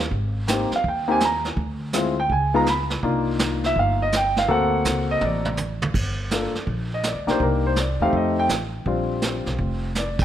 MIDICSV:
0, 0, Header, 1, 5, 480
1, 0, Start_track
1, 0, Key_signature, -2, "minor"
1, 0, Tempo, 364520
1, 150, Time_signature, 4, 2, 24, 8
1, 13496, End_track
2, 0, Start_track
2, 0, Title_t, "Grand piano"
2, 0, Program_c, 0, 0
2, 625, Note_on_c, 0, 58, 57
2, 634, Note_on_c, 0, 60, 51
2, 638, Note_on_c, 0, 67, 58
2, 640, Note_on_c, 0, 63, 50
2, 911, Note_off_c, 0, 58, 0
2, 916, Note_off_c, 0, 60, 0
2, 918, Note_off_c, 0, 63, 0
2, 918, Note_off_c, 0, 67, 0
2, 998, Note_on_c, 0, 77, 78
2, 1132, Note_off_c, 0, 77, 0
2, 1164, Note_on_c, 0, 79, 69
2, 1419, Note_on_c, 0, 58, 68
2, 1420, Note_on_c, 0, 60, 61
2, 1425, Note_on_c, 0, 63, 57
2, 1428, Note_on_c, 0, 67, 75
2, 1443, Note_off_c, 0, 79, 0
2, 1470, Note_on_c, 0, 80, 82
2, 1570, Note_off_c, 0, 58, 0
2, 1570, Note_off_c, 0, 60, 0
2, 1573, Note_off_c, 0, 63, 0
2, 1574, Note_off_c, 0, 67, 0
2, 1607, Note_off_c, 0, 80, 0
2, 1646, Note_on_c, 0, 82, 81
2, 1924, Note_off_c, 0, 82, 0
2, 2551, Note_on_c, 0, 60, 56
2, 2552, Note_on_c, 0, 56, 60
2, 2552, Note_on_c, 0, 64, 56
2, 2556, Note_on_c, 0, 65, 66
2, 2833, Note_off_c, 0, 56, 0
2, 2833, Note_off_c, 0, 60, 0
2, 2833, Note_off_c, 0, 64, 0
2, 2835, Note_off_c, 0, 65, 0
2, 2892, Note_on_c, 0, 79, 85
2, 3037, Note_off_c, 0, 79, 0
2, 3055, Note_on_c, 0, 80, 73
2, 3347, Note_off_c, 0, 80, 0
2, 3347, Note_on_c, 0, 56, 77
2, 3347, Note_on_c, 0, 59, 68
2, 3349, Note_on_c, 0, 63, 66
2, 3350, Note_on_c, 0, 65, 76
2, 3372, Note_on_c, 0, 82, 89
2, 3492, Note_off_c, 0, 56, 0
2, 3493, Note_off_c, 0, 59, 0
2, 3494, Note_off_c, 0, 63, 0
2, 3494, Note_off_c, 0, 65, 0
2, 3517, Note_off_c, 0, 82, 0
2, 3546, Note_on_c, 0, 83, 84
2, 3723, Note_off_c, 0, 83, 0
2, 3992, Note_on_c, 0, 58, 66
2, 4000, Note_on_c, 0, 62, 54
2, 4003, Note_on_c, 0, 63, 58
2, 4005, Note_on_c, 0, 65, 65
2, 4821, Note_on_c, 0, 76, 84
2, 4961, Note_off_c, 0, 76, 0
2, 4995, Note_on_c, 0, 77, 81
2, 5276, Note_off_c, 0, 77, 0
2, 5299, Note_on_c, 0, 75, 85
2, 5329, Note_off_c, 0, 58, 0
2, 5333, Note_off_c, 0, 62, 0
2, 5334, Note_off_c, 0, 63, 0
2, 5336, Note_off_c, 0, 65, 0
2, 5439, Note_off_c, 0, 75, 0
2, 5482, Note_on_c, 0, 79, 95
2, 5760, Note_off_c, 0, 79, 0
2, 5777, Note_on_c, 0, 77, 85
2, 5904, Note_on_c, 0, 60, 60
2, 5904, Note_on_c, 0, 66, 60
2, 5904, Note_on_c, 0, 69, 76
2, 5905, Note_on_c, 0, 58, 68
2, 5918, Note_off_c, 0, 77, 0
2, 5939, Note_on_c, 0, 78, 82
2, 6664, Note_off_c, 0, 78, 0
2, 6732, Note_on_c, 0, 75, 88
2, 6876, Note_off_c, 0, 75, 0
2, 6912, Note_on_c, 0, 74, 69
2, 7245, Note_off_c, 0, 58, 0
2, 7245, Note_off_c, 0, 60, 0
2, 7245, Note_off_c, 0, 66, 0
2, 7245, Note_off_c, 0, 69, 0
2, 7336, Note_off_c, 0, 74, 0
2, 8316, Note_on_c, 0, 58, 48
2, 8321, Note_on_c, 0, 62, 43
2, 8326, Note_on_c, 0, 65, 44
2, 8332, Note_on_c, 0, 69, 51
2, 8594, Note_off_c, 0, 58, 0
2, 8596, Note_off_c, 0, 62, 0
2, 8599, Note_off_c, 0, 65, 0
2, 8602, Note_off_c, 0, 69, 0
2, 9140, Note_on_c, 0, 75, 72
2, 9280, Note_off_c, 0, 75, 0
2, 9322, Note_on_c, 0, 74, 60
2, 9576, Note_on_c, 0, 58, 64
2, 9578, Note_on_c, 0, 62, 62
2, 9579, Note_on_c, 0, 63, 57
2, 9579, Note_on_c, 0, 67, 62
2, 9600, Note_off_c, 0, 74, 0
2, 9621, Note_on_c, 0, 72, 74
2, 9761, Note_off_c, 0, 72, 0
2, 9778, Note_on_c, 0, 70, 61
2, 10068, Note_off_c, 0, 70, 0
2, 10094, Note_on_c, 0, 72, 72
2, 10190, Note_off_c, 0, 58, 0
2, 10191, Note_off_c, 0, 62, 0
2, 10192, Note_off_c, 0, 63, 0
2, 10192, Note_off_c, 0, 67, 0
2, 10238, Note_off_c, 0, 72, 0
2, 10262, Note_on_c, 0, 74, 63
2, 10550, Note_off_c, 0, 74, 0
2, 10553, Note_on_c, 0, 57, 71
2, 10559, Note_on_c, 0, 63, 62
2, 10560, Note_on_c, 0, 60, 64
2, 10564, Note_on_c, 0, 67, 75
2, 10565, Note_on_c, 0, 77, 80
2, 10713, Note_off_c, 0, 77, 0
2, 10755, Note_on_c, 0, 75, 64
2, 11037, Note_off_c, 0, 75, 0
2, 11054, Note_on_c, 0, 79, 91
2, 11143, Note_off_c, 0, 79, 0
2, 11159, Note_off_c, 0, 57, 0
2, 11162, Note_off_c, 0, 63, 0
2, 11163, Note_off_c, 0, 60, 0
2, 11164, Note_off_c, 0, 67, 0
2, 11672, Note_on_c, 0, 55, 54
2, 11678, Note_on_c, 0, 60, 50
2, 11679, Note_on_c, 0, 62, 47
2, 11683, Note_on_c, 0, 65, 60
2, 13012, Note_off_c, 0, 55, 0
2, 13015, Note_off_c, 0, 60, 0
2, 13015, Note_off_c, 0, 62, 0
2, 13017, Note_off_c, 0, 65, 0
2, 13146, Note_on_c, 0, 74, 69
2, 13434, Note_off_c, 0, 74, 0
2, 13455, Note_on_c, 0, 79, 97
2, 13496, Note_off_c, 0, 79, 0
2, 13496, End_track
3, 0, Start_track
3, 0, Title_t, "Upright bass"
3, 0, Program_c, 1, 32
3, 146, Note_on_c, 1, 32, 80
3, 890, Note_off_c, 1, 32, 0
3, 1108, Note_on_c, 1, 39, 80
3, 2019, Note_off_c, 1, 39, 0
3, 2058, Note_on_c, 1, 38, 81
3, 2974, Note_off_c, 1, 38, 0
3, 3021, Note_on_c, 1, 37, 75
3, 3935, Note_off_c, 1, 37, 0
3, 3985, Note_on_c, 1, 36, 74
3, 4897, Note_off_c, 1, 36, 0
3, 4942, Note_on_c, 1, 31, 81
3, 5855, Note_off_c, 1, 31, 0
3, 5902, Note_on_c, 1, 38, 76
3, 6349, Note_off_c, 1, 38, 0
3, 6380, Note_on_c, 1, 37, 63
3, 6828, Note_off_c, 1, 37, 0
3, 6863, Note_on_c, 1, 33, 85
3, 7775, Note_off_c, 1, 33, 0
3, 7820, Note_on_c, 1, 31, 74
3, 8565, Note_off_c, 1, 31, 0
3, 8779, Note_on_c, 1, 34, 85
3, 9377, Note_off_c, 1, 34, 0
3, 9414, Note_on_c, 1, 38, 50
3, 9565, Note_off_c, 1, 38, 0
3, 9573, Note_on_c, 1, 35, 60
3, 9727, Note_off_c, 1, 35, 0
3, 9742, Note_on_c, 1, 36, 80
3, 10486, Note_off_c, 1, 36, 0
3, 10532, Note_on_c, 1, 40, 68
3, 10689, Note_off_c, 1, 40, 0
3, 10705, Note_on_c, 1, 41, 76
3, 11152, Note_off_c, 1, 41, 0
3, 11177, Note_on_c, 1, 33, 69
3, 11628, Note_off_c, 1, 33, 0
3, 11661, Note_on_c, 1, 34, 82
3, 12407, Note_off_c, 1, 34, 0
3, 12462, Note_on_c, 1, 35, 64
3, 12612, Note_off_c, 1, 35, 0
3, 12620, Note_on_c, 1, 29, 81
3, 13496, Note_off_c, 1, 29, 0
3, 13496, End_track
4, 0, Start_track
4, 0, Title_t, "Muted upright bass strokes"
4, 936, Note_on_c, 9, 29, 38
4, 1068, Note_off_c, 9, 29, 0
4, 8605, Note_on_c, 9, 29, 34
4, 8737, Note_off_c, 9, 29, 0
4, 13496, End_track
5, 0, Start_track
5, 0, Title_t, "Drums"
5, 151, Note_on_c, 9, 25, 45
5, 151, Note_on_c, 9, 36, 34
5, 283, Note_off_c, 9, 36, 0
5, 629, Note_on_c, 9, 44, 64
5, 633, Note_on_c, 9, 38, 63
5, 761, Note_off_c, 9, 44, 0
5, 765, Note_off_c, 9, 38, 0
5, 940, Note_on_c, 9, 38, 34
5, 1071, Note_off_c, 9, 38, 0
5, 1108, Note_on_c, 9, 36, 31
5, 1112, Note_off_c, 9, 25, 0
5, 1112, Note_on_c, 9, 25, 53
5, 1240, Note_off_c, 9, 36, 0
5, 1583, Note_on_c, 9, 44, 50
5, 1587, Note_on_c, 9, 38, 54
5, 1715, Note_off_c, 9, 44, 0
5, 1719, Note_off_c, 9, 38, 0
5, 1905, Note_on_c, 9, 38, 38
5, 2036, Note_off_c, 9, 38, 0
5, 2066, Note_off_c, 9, 25, 0
5, 2066, Note_on_c, 9, 25, 42
5, 2067, Note_on_c, 9, 36, 36
5, 2198, Note_off_c, 9, 36, 0
5, 2541, Note_on_c, 9, 44, 66
5, 2545, Note_on_c, 9, 38, 61
5, 2672, Note_off_c, 9, 44, 0
5, 2676, Note_off_c, 9, 38, 0
5, 3025, Note_on_c, 9, 36, 34
5, 3028, Note_off_c, 9, 25, 0
5, 3028, Note_on_c, 9, 25, 44
5, 3157, Note_off_c, 9, 36, 0
5, 3505, Note_on_c, 9, 44, 47
5, 3509, Note_on_c, 9, 38, 49
5, 3636, Note_off_c, 9, 44, 0
5, 3640, Note_off_c, 9, 38, 0
5, 3821, Note_on_c, 9, 38, 41
5, 3953, Note_off_c, 9, 38, 0
5, 3989, Note_on_c, 9, 36, 35
5, 3992, Note_off_c, 9, 25, 0
5, 3992, Note_on_c, 9, 25, 55
5, 4121, Note_off_c, 9, 36, 0
5, 4463, Note_on_c, 9, 44, 64
5, 4467, Note_on_c, 9, 38, 64
5, 4595, Note_off_c, 9, 44, 0
5, 4599, Note_off_c, 9, 38, 0
5, 4790, Note_on_c, 9, 38, 37
5, 4922, Note_off_c, 9, 38, 0
5, 4950, Note_on_c, 9, 36, 30
5, 4956, Note_off_c, 9, 25, 0
5, 4956, Note_on_c, 9, 25, 44
5, 5082, Note_off_c, 9, 36, 0
5, 5429, Note_on_c, 9, 44, 54
5, 5433, Note_on_c, 9, 38, 53
5, 5560, Note_off_c, 9, 44, 0
5, 5564, Note_off_c, 9, 38, 0
5, 5747, Note_on_c, 9, 38, 37
5, 5879, Note_off_c, 9, 38, 0
5, 5908, Note_on_c, 9, 36, 36
5, 5909, Note_off_c, 9, 25, 0
5, 5909, Note_on_c, 9, 25, 47
5, 6040, Note_off_c, 9, 36, 0
5, 6383, Note_on_c, 9, 44, 59
5, 6387, Note_on_c, 9, 38, 65
5, 6515, Note_off_c, 9, 44, 0
5, 6519, Note_off_c, 9, 38, 0
5, 6858, Note_on_c, 9, 47, 46
5, 6990, Note_off_c, 9, 47, 0
5, 7179, Note_on_c, 9, 47, 63
5, 7311, Note_off_c, 9, 47, 0
5, 7333, Note_on_c, 9, 44, 51
5, 7337, Note_on_c, 9, 43, 54
5, 7465, Note_off_c, 9, 44, 0
5, 7469, Note_off_c, 9, 43, 0
5, 7663, Note_on_c, 9, 43, 84
5, 7795, Note_off_c, 9, 43, 0
5, 7825, Note_on_c, 9, 36, 68
5, 7832, Note_off_c, 9, 25, 0
5, 7832, Note_on_c, 9, 25, 49
5, 7832, Note_on_c, 9, 49, 72
5, 7957, Note_off_c, 9, 36, 0
5, 7964, Note_off_c, 9, 49, 0
5, 8306, Note_on_c, 9, 44, 55
5, 8310, Note_on_c, 9, 38, 52
5, 8438, Note_off_c, 9, 44, 0
5, 8442, Note_off_c, 9, 38, 0
5, 8626, Note_on_c, 9, 38, 31
5, 8758, Note_off_c, 9, 38, 0
5, 8784, Note_on_c, 9, 36, 34
5, 8785, Note_off_c, 9, 25, 0
5, 8785, Note_on_c, 9, 25, 45
5, 8916, Note_off_c, 9, 36, 0
5, 9260, Note_on_c, 9, 44, 47
5, 9264, Note_on_c, 9, 38, 52
5, 9392, Note_off_c, 9, 44, 0
5, 9396, Note_off_c, 9, 38, 0
5, 9586, Note_on_c, 9, 38, 38
5, 9718, Note_off_c, 9, 38, 0
5, 9745, Note_on_c, 9, 36, 36
5, 9750, Note_off_c, 9, 25, 0
5, 9750, Note_on_c, 9, 25, 53
5, 9877, Note_off_c, 9, 36, 0
5, 10217, Note_on_c, 9, 44, 50
5, 10221, Note_on_c, 9, 38, 55
5, 10349, Note_off_c, 9, 44, 0
5, 10353, Note_off_c, 9, 38, 0
5, 10705, Note_on_c, 9, 36, 31
5, 10707, Note_off_c, 9, 25, 0
5, 10707, Note_on_c, 9, 25, 43
5, 10836, Note_off_c, 9, 36, 0
5, 11181, Note_on_c, 9, 44, 54
5, 11185, Note_on_c, 9, 38, 54
5, 11312, Note_off_c, 9, 44, 0
5, 11316, Note_off_c, 9, 38, 0
5, 11662, Note_off_c, 9, 25, 0
5, 11662, Note_on_c, 9, 25, 45
5, 11667, Note_on_c, 9, 36, 36
5, 11799, Note_off_c, 9, 36, 0
5, 12137, Note_on_c, 9, 44, 49
5, 12141, Note_on_c, 9, 38, 57
5, 12269, Note_off_c, 9, 44, 0
5, 12273, Note_off_c, 9, 38, 0
5, 12457, Note_on_c, 9, 38, 32
5, 12589, Note_off_c, 9, 38, 0
5, 12620, Note_off_c, 9, 25, 0
5, 12620, Note_on_c, 9, 25, 50
5, 12625, Note_on_c, 9, 36, 35
5, 12757, Note_off_c, 9, 36, 0
5, 13101, Note_on_c, 9, 44, 53
5, 13105, Note_on_c, 9, 38, 48
5, 13233, Note_off_c, 9, 44, 0
5, 13237, Note_off_c, 9, 38, 0
5, 13417, Note_on_c, 9, 51, 68
5, 13421, Note_on_c, 9, 36, 81
5, 13496, Note_off_c, 9, 25, 0
5, 13496, Note_off_c, 9, 36, 0
5, 13496, Note_off_c, 9, 51, 0
5, 13496, End_track
0, 0, End_of_file